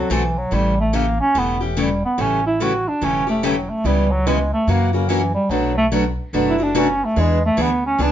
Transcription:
0.00 bass clarinet F#3
0.10 upright bass B1, steel-string acoustic guitar D3 A3 C4 F#4 A4, bass clarinet E3
0.38 bass clarinet F#3
0.51 upright bass A1, steel-string acoustic guitar C#3 E3 A3 C#4 G4, bass clarinet G3
0.80 bass clarinet A3
0.93 steel-string acoustic guitar C#3 E3 A3 C#4 G4, bass clarinet A#3
1.20 bass clarinet C#4
1.35 upright bass E1, steel-string acoustic guitar C#3 E3 A3 C#4 G4
1.39 bass clarinet B3
1.61 bass clarinet E3, steel-string acoustic guitar A3 C#4 G4
1.77 steel-string acoustic guitar C#3 E3 A3 C#4 G4, bass clarinet G3
2.05 bass clarinet B3
2.18 upright bass A1, steel-string acoustic guitar C#3 E3 G3 A3 C#4 E4 G4 A4, bass clarinet C#4
2.47 bass clarinet E4
2.60 steel-string acoustic guitar C#3 E3 G3 A3 C#4 E4 G4 A4, bass clarinet F#4
2.88 bass clarinet D4
3.01 upright bass E1, steel-string acoustic guitar C#3 E3 G3 A3 C#4 E4 G4 A4, bass clarinet C#4
3.27 steel-string acoustic guitar A3 C#4 G4, bass clarinet A3
3.43 steel-string acoustic guitar C#3 E3 G3 A3 C#4 E4 G4 A4, bass clarinet F#3
3.70 bass clarinet A3
3.84 upright bass C#2, steel-string acoustic guitar C#3 E3 G3 B3 C#4 E4 G4 B4, bass clarinet G3
4.11 bass clarinet F#3
4.26 steel-string acoustic guitar C#3 E3 G3 B3 C#4 E4 G4 B4, bass clarinet G#3
4.53 bass clarinet A3
4.67 upright bass F#2, steel-string acoustic guitar C#3 E3 F#3 A#3 C#4 E4 F#4 A#4, bass clarinet A#3
4.93 bass clarinet C#3, steel-string acoustic guitar A#3 C#4 F#4
5.09 steel-string acoustic guitar C#3 E3 F#3 A#3 C#4 E4 F#4 A#4, bass clarinet E3
5.34 bass clarinet G3
5.49 upright bass B1, steel-string acoustic guitar B2 F#3 A3 D4 F#4 B4, bass clarinet F#3
5.77 bass clarinet A3
5.92 steel-string acoustic guitar B2 F#3 A3 D4 F#4 B4
6.33 upright bass F#1, steel-string acoustic guitar B2 F#3 A3 D4 F#4 B4
6.50 bass clarinet E4
6.58 steel-string acoustic guitar A3 D4 F#4
6.63 bass clarinet D4
6.75 steel-string acoustic guitar B2 F#3 A3 D4 F#4 B4, bass clarinet C#4
7.04 bass clarinet A3
7.16 upright bass E2, steel-string acoustic guitar E3 B3 D4 G#4 B4, bass clarinet G#3
7.45 bass clarinet A3
7.57 upright bass D2, steel-string acoustic guitar E3 B3 D4 G#4 B4
7.61 bass clarinet B3
7.86 bass clarinet C#4
7.98 upright bass C#2, steel-string acoustic guitar E3 B3 D4 G#4 B4, bass clarinet D4

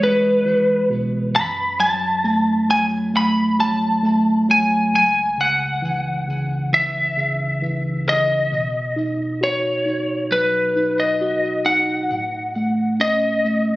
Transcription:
Already playing: tine electric piano E2 E3
0.00 tine electric piano G#3, lead electric guitar B4
0.46 tine electric piano E3
0.90 tine electric piano B1 B2
1.35 tine electric piano F#2, lead electric guitar B5
1.80 tine electric piano F#3, lead electric guitar A5
2.24 tine electric piano A3
2.69 tine electric piano F#3, lead electric guitar G#5
3.14 tine electric piano A3, lead electric guitar B5
3.59 tine electric piano F#3, lead electric guitar A5
4.03 tine electric piano A3
4.49 tine electric piano F#3, lead electric guitar G#5
4.93 tine electric piano C#2, lead electric guitar G#5
5.38 tine electric piano C#3, lead electric guitar F#5
5.82 tine electric piano E3
6.28 tine electric piano C#3
6.73 tine electric piano E3, lead electric guitar E5
7.17 tine electric piano C#3
7.62 tine electric piano E3
8.07 tine electric piano C#3, lead electric guitar D#5
8.52 tine electric piano B2
8.96 tine electric piano D#4
9.41 tine electric piano F#4, lead electric guitar C#5
9.86 tine electric piano D#4
10.31 tine electric piano F#3, lead electric guitar B4
10.76 tine electric piano D#4
11.00 lead electric guitar D#5
11.21 tine electric piano F#4
11.66 tine electric piano D#4, lead electric guitar F#5
12.11 tine electric piano A2
12.56 tine electric piano A3
13.00 tine electric piano C#4, lead electric guitar D#5
13.45 tine electric piano A3

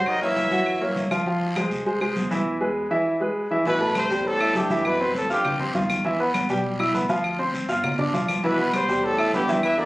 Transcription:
Already playing: upright bass F#2, grand piano F#3 F#4 F#5
0.06 baritone saxophone D#3, trumpet D#5, high conga, long guiro, claves
0.22 baritone saxophone E3, grand piano A#3 A#4 C#5, trumpet E5, high conga
0.36 high conga, short guiro
0.51 upright bass F#2, grand piano F#3 F#4 F#5, high conga, short guiro
0.66 high conga, long guiro, claves
0.81 upright bass F#2, grand piano A#3 A#4 C#5, high conga
0.96 upright bass F2, high conga, short guiro
1.11 grand piano F3 F4 F5, high conga, short guiro, claves
1.26 grand piano F3 F4 F5, high conga, long guiro
1.41 high conga
1.56 grand piano G#3 G#4 C5, high conga, short guiro, claves
1.71 upright bass C2, high conga, short guiro
1.86 grand piano G#3 G#4 C5, high conga, long guiro
2.01 grand piano G#3 G#4 C5, high conga, claves
2.16 upright bass E2, high conga, short guiro
2.31 grand piano E3 E4 E5, high conga, short guiro
2.61 grand piano G#3 G#4 B4
2.91 grand piano E3 E4 E5
3.20 grand piano G#3 G#4 B4
3.51 grand piano E3 E4 E5
3.65 upright bass A1, baritone saxophone B2, grand piano E3 E4 E5, trumpet B4, high conga, long guiro
3.81 grand piano A3 A4 A5, high conga
3.95 baritone saxophone C3, trumpet C5, high conga, short guiro, claves
4.10 upright bass E2, grand piano G3 G4 G5, high conga, short guiro
4.25 baritone saxophone A2, trumpet A4, high conga, long guiro
4.40 grand piano E4 E5 E6, high conga, claves
4.54 upright bass F#2, baritone saxophone G2, grand piano A3 A4 A5, trumpet G4, high conga, short guiro
4.70 grand piano E3 E4 E5, high conga, short guiro
4.85 baritone saxophone B2, trumpet B4, high conga, long guiro, claves
5.00 grand piano C4 C5 C6, high conga
5.14 baritone saxophone A2, trumpet A4, high conga, short guiro
5.30 upright bass F2, baritone saxophone G2, grand piano F4 F5 F6, trumpet G4, high conga, short guiro
5.45 high conga, low conga, long guiro, claves
5.59 grand piano C4 C5 C6, high conga
5.74 upright bass E2, grand piano D#3 F4 F5, high conga, short guiro
5.90 high conga, short guiro, claves
6.04 grand piano E3 E4 E5, high conga, long guiro
6.20 grand piano B3 B4 B5, high conga
6.34 high conga, short guiro, claves
6.49 upright bass B1, grand piano G3 G4 G5, short guiro
6.64 high conga, long guiro
6.79 grand piano E4 E5 E6, high conga, claves
6.94 upright bass D2, grand piano B3 B4 B5, high conga, short guiro
7.09 grand piano F3 F4 F5, high conga, short guiro
7.24 high conga, long guiro, claves
7.39 grand piano C4 C5 C6, high conga
7.54 high conga, short guiro
7.69 upright bass G1, grand piano F4 F5 F6, high conga, short guiro
7.84 high conga, low conga, long guiro, claves
7.99 grand piano D4 D5 D6, high conga, low conga
8.13 upright bass C2, grand piano F3 F4 F5, high conga, short guiro
8.29 high conga, short guiro, claves
8.44 baritone saxophone B2, grand piano E3 E4 E5, trumpet B4, long guiro
8.58 grand piano B3 B4 B5, high conga
8.73 baritone saxophone C3, trumpet C5, high conga, short guiro, claves
8.88 upright bass E2, grand piano G3 G4 G5, high conga, short guiro
9.03 baritone saxophone A2, trumpet A4, high conga, long guiro
9.18 grand piano E4 E5 E6, high conga, claves
9.33 upright bass E2, baritone saxophone G2, grand piano B3 B4 B5, trumpet G4, high conga, short guiro
9.48 grand piano E3 E4 E5, high conga, short guiro
9.63 baritone saxophone E3, trumpet E5, high conga, long guiro, claves
9.78 baritone saxophone D3, grand piano A#3 A#4 A#5, trumpet D5, high conga

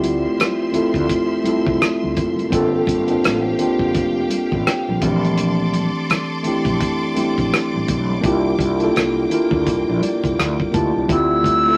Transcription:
Already playing: fretless electric bass D2, string section F3 E5 C6, tine electric piano A3 C4 E4 F4 G4 A#4 D5
0.01 closed hi-hat, muted conga, high conga
0.38 cross-stick, closed hi-hat, muted conga, high conga
0.72 tine electric piano A3 C4 E4 F4, muted fretless electric bass stroke, closed hi-hat, muted conga, low conga
0.76 tine electric piano A4
0.94 fretless electric bass D2, kick, closed hi-hat
1.09 kick, closed hi-hat
1.43 tine electric piano A3 C4 E4 F4, muted fretless electric bass stroke, closed hi-hat, muted conga, high conga
1.48 tine electric piano A4
1.66 fretless electric bass C2, kick
1.82 cross-stick, closed hi-hat
2.02 fretless electric bass D2, high conga
2.15 fretless electric bass F#1, kick, closed hi-hat, muted conga, low conga
2.36 closed hi-hat, high conga
2.50 fretless electric bass G1, tine electric piano A#3 C4 D4 F4, string section G4 F5 G5, kick, closed hi-hat, muted conga
2.55 tine electric piano A4
2.87 fretless electric bass G1, kick, closed hi-hat, muted conga, high conga
3.07 tine electric piano A#3 C4 D4 F4, closed hi-hat
3.12 tine electric piano C5
3.24 fretless electric bass A1, cross-stick, closed hi-hat, muted conga, high conga
3.58 tine electric piano A#3 C4 D4 F4, closed hi-hat, low conga
3.62 tine electric piano G4
3.79 fretless electric bass G1, kick
3.95 fretless electric bass F1, kick, closed hi-hat
4.30 closed hi-hat, muted conga, high conga
4.52 fretless electric bass A1, kick
4.65 tine electric piano G5, cross-stick, closed hi-hat, muted conga
4.88 fretless electric bass A#1, high conga
5.01 fretless electric bass A#1, tine electric piano E3 A3 C4 D4 F5, string section A4 D5 C6 D6, kick, closed hi-hat, muted conga, low conga
5.05 tine electric piano G4
5.23 closed hi-hat, high conga
5.38 closed hi-hat
5.73 closed hi-hat, muted conga, high conga
6.10 cross-stick, closed hi-hat, high conga
6.43 tine electric piano A3 C4 D4 E4, muted fretless electric bass stroke, closed hi-hat, muted conga, low conga
6.48 tine electric piano G4
6.65 fretless electric bass A#1, kick, closed hi-hat
6.81 kick, closed hi-hat, muted conga
7.15 tine electric piano A3 C4 C#4 E4, muted fretless electric bass stroke, closed hi-hat, high conga
7.19 tine electric piano G4
7.23 tine electric piano D4
7.38 fretless electric bass A#1, kick, closed hi-hat
7.51 cross-stick, closed hi-hat, muted conga
7.74 fretless electric bass A1, high conga
7.87 fretless electric bass B1, kick, closed hi-hat, muted conga, low conga
8.08 high conga
8.21 fretless electric bass C2, tine electric piano A#3 D4 E4 F4, string section A#3 G5, kick, closed hi-hat
8.26 tine electric piano G4
8.58 fretless electric bass C2, kick, closed hi-hat, high conga
8.79 tine electric piano A#3 D4 E4 F4, closed hi-hat
8.84 tine electric piano A4
8.95 fretless electric bass C2, cross-stick, closed hi-hat, muted conga, high conga
9.29 tine electric piano A#3 D4 E4 F4, closed hi-hat, low conga
9.34 tine electric piano A#4
9.51 fretless electric bass D2, kick
9.66 fretless electric bass C2, kick, closed hi-hat, muted conga
9.89 fretless electric bass A#1
10.01 tine electric piano D5, closed hi-hat, muted conga, high conga
10.24 fretless electric bass C2, kick, closed hi-hat
10.36 fretless electric bass D2, tine electric piano F5, cross-stick, closed hi-hat, muted conga
10.59 kick, high conga
10.72 fretless electric bass D2, tine electric piano A#3 D4 E4 F4 A5, kick, closed hi-hat, muted conga, low conga
10.77 tine electric piano G4
10.92 fretless electric bass C2, high conga
11.08 fretless electric bass D2, tine electric piano A3 C4 E4 F4, kick, closed hi-hat, muted conga
11.12 tine electric piano G4, flute E6
11.43 kick, closed hi-hat, muted conga, high conga
11.65 tine electric piano A3 C4 E4 F4
11.69 tine electric piano A4

